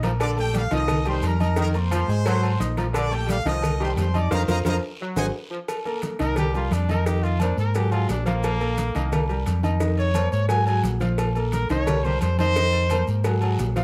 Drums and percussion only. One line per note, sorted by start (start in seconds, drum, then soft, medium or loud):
0.03 cowbell medium
0.03 high conga medium
0.03 low agogo medium
0.03 short guiro medium
0.03 maracas soft
0.20 cowbell loud
0.20 high conga soft
0.20 low agogo loud
0.20 long guiro medium
0.20 maracas medium
0.38 high conga soft
0.38 low agogo medium
0.38 maracas soft
0.54 cowbell medium
0.54 high conga loud
0.54 short guiro medium
0.54 maracas medium
0.71 cowbell medium
0.71 high conga soft
0.71 low agogo medium
0.71 short guiro medium
0.71 maracas soft
0.88 cowbell loud
0.88 high conga soft
0.88 low conga medium
0.88 low agogo loud
0.88 long guiro medium
0.88 maracas medium
1.05 low agogo medium
1.05 maracas soft
1.22 cowbell medium
1.22 high conga medium
1.22 low agogo medium
1.22 short guiro medium
1.22 maracas medium
1.40 high conga medium
1.40 low agogo loud
1.40 short guiro medium
1.40 maracas soft
1.56 cowbell loud
1.56 high conga soft
1.56 long guiro medium
1.56 maracas medium
1.74 high conga soft
1.74 low agogo medium
1.74 maracas soft
1.91 cowbell medium
1.91 high conga loud
1.91 low agogo loud
1.91 short guiro medium
1.91 maracas medium
2.09 short guiro medium
2.09 maracas soft
2.26 cowbell loud
2.26 high conga soft
2.26 low agogo medium
2.26 long guiro medium
2.26 maracas medium
2.43 high conga soft
2.43 low agogo loud
2.43 maracas soft
2.60 cowbell medium
2.60 high conga medium
2.60 short guiro medium
2.60 maracas medium
2.77 cowbell medium
2.77 high conga medium
2.77 low agogo medium
2.77 short guiro medium
2.77 maracas soft
2.94 cowbell loud
2.94 high conga soft
2.94 low agogo loud
2.94 long guiro medium
2.94 maracas medium
3.11 high conga soft
3.11 low agogo medium
3.11 maracas soft
3.29 cowbell medium
3.29 high conga loud
3.29 short guiro medium
3.29 maracas medium
3.46 cowbell medium
3.46 high conga soft
3.46 low agogo loud
3.46 short guiro medium
3.46 maracas soft
3.63 cowbell loud
3.63 high conga soft
3.63 low conga medium
3.63 low agogo loud
3.63 long guiro medium
3.63 maracas medium
3.80 low agogo medium
3.80 maracas soft
3.97 cowbell medium
3.97 high conga medium
3.97 low timbale medium
3.97 low agogo medium
3.97 short guiro medium
3.97 maracas medium
4.14 high conga medium
4.14 low agogo loud
4.14 short guiro medium
4.14 maracas soft
4.31 cowbell loud
4.31 high conga loud
4.31 high timbale loud
4.31 long guiro loud
4.31 maracas loud
4.48 cowbell loud
4.48 high conga loud
4.48 high timbale loud
4.48 long guiro loud
4.48 maracas loud
4.65 cowbell loud
4.65 high conga loud
4.65 high timbale loud
4.65 long guiro loud
4.65 maracas loud
5.16 cowbell loud
5.16 high conga loud
5.16 high timbale loud
5.16 long guiro loud
5.16 maracas loud
5.68 cowbell loud
5.68 high conga soft
5.68 low agogo loud
5.68 long guiro medium
5.68 maracas medium
5.85 high conga soft
5.85 low agogo medium
5.85 maracas soft
6.02 cowbell medium
6.02 high conga medium
6.02 short guiro medium
6.02 maracas medium
6.19 cowbell medium
6.19 high conga soft
6.19 low agogo medium
6.19 short guiro medium
6.19 maracas soft
6.36 cowbell loud
6.36 high conga soft
6.36 low conga medium
6.36 low agogo loud
6.36 long guiro medium
6.36 maracas medium
6.54 high conga soft
6.54 low agogo medium
6.54 maracas soft
6.71 cowbell medium
6.71 high conga medium
6.71 low agogo medium
6.71 short guiro medium
6.71 maracas medium
6.89 high conga medium
6.89 low agogo loud
6.89 short guiro medium
6.89 maracas soft
7.06 cowbell loud
7.06 high conga soft
7.06 long guiro medium
7.06 maracas medium
7.24 high conga soft
7.24 low agogo medium
7.24 maracas soft
7.39 cowbell medium
7.39 high conga medium
7.39 low agogo loud
7.39 short guiro medium
7.39 maracas medium
7.58 short guiro medium
7.58 maracas soft
7.75 cowbell loud
7.75 high conga soft
7.75 low agogo medium
7.75 long guiro medium
7.75 maracas medium
7.92 high conga soft
7.92 low agogo loud
7.92 maracas soft
8.09 cowbell medium
8.09 high conga medium
8.09 low timbale medium
8.09 short guiro medium
8.09 maracas medium
8.26 cowbell medium
8.26 high conga medium
8.26 low agogo medium
8.26 short guiro medium
8.26 maracas soft
8.43 cowbell loud
8.43 high conga soft
8.43 low agogo loud
8.43 long guiro medium
8.43 maracas medium
8.61 high conga soft
8.61 low agogo medium
8.61 maracas soft
8.78 cowbell medium
8.78 high conga loud
8.78 short guiro medium
8.78 maracas medium
8.95 cowbell medium
8.95 high conga soft
8.95 low agogo medium
8.95 short guiro medium
8.95 maracas soft
9.12 cowbell loud
9.12 high conga soft
9.12 low conga medium
9.12 low agogo loud
9.12 long guiro medium
9.12 maracas medium
9.29 low agogo medium
9.29 maracas soft
9.46 cowbell medium
9.46 high conga medium
9.46 low agogo medium
9.46 short guiro medium
9.46 maracas medium
9.63 high conga medium
9.63 low agogo loud
9.63 short guiro medium
9.63 maracas soft
9.80 cowbell loud
9.80 high conga soft
9.80 long guiro medium
9.80 maracas medium
9.97 high conga soft
9.97 low agogo medium
9.97 maracas soft
10.14 cowbell medium
10.14 high conga loud
10.14 low agogo loud
10.14 short guiro medium
10.14 maracas medium
10.32 short guiro medium
10.32 maracas soft
10.49 cowbell loud
10.49 high conga soft
10.49 low agogo medium
10.49 long guiro medium
10.49 maracas medium
10.66 high conga soft
10.66 low agogo loud
10.66 maracas soft
10.83 cowbell medium
10.83 high conga medium
10.83 short guiro medium
10.83 maracas medium
11.00 cowbell medium
11.00 high conga medium
11.00 low agogo medium
11.00 short guiro medium
11.00 maracas soft
11.18 cowbell loud
11.18 high conga soft
11.18 low agogo loud
11.18 long guiro medium
11.18 maracas medium
11.35 high conga soft
11.35 low agogo medium
11.35 maracas soft
11.52 cowbell medium
11.52 high conga medium
11.52 short guiro medium
11.52 maracas medium
11.69 cowbell medium
11.69 high conga soft
11.69 low agogo medium
11.69 short guiro medium
11.69 maracas soft
11.87 cowbell loud
11.87 high conga soft
11.87 low conga medium
11.87 low agogo loud
11.87 long guiro medium
11.87 maracas medium
12.04 high conga soft
12.04 low conga medium
12.04 low agogo medium
12.04 maracas soft
12.21 cowbell medium
12.21 high conga medium
12.21 low agogo medium
12.21 short guiro medium
12.21 maracas medium
12.38 high conga medium
12.38 low agogo loud
12.38 short guiro medium
12.38 maracas soft
12.56 cowbell loud
12.56 maracas medium
12.73 high conga soft
12.73 low agogo medium
12.73 maracas soft
12.90 cowbell medium
12.90 high conga loud
12.90 low agogo loud
12.90 short guiro medium
12.90 maracas medium
13.07 short guiro medium
13.07 maracas soft
13.24 cowbell loud
13.24 high conga soft
13.24 low agogo medium
13.24 long guiro medium
13.24 maracas medium
13.41 high conga soft
13.41 low agogo loud
13.41 maracas soft
13.59 cowbell medium
13.59 high conga medium
13.59 low timbale medium
13.59 short guiro medium
13.59 maracas medium
13.76 cowbell medium
13.76 high conga medium
13.76 low agogo medium
13.76 short guiro medium
13.76 maracas soft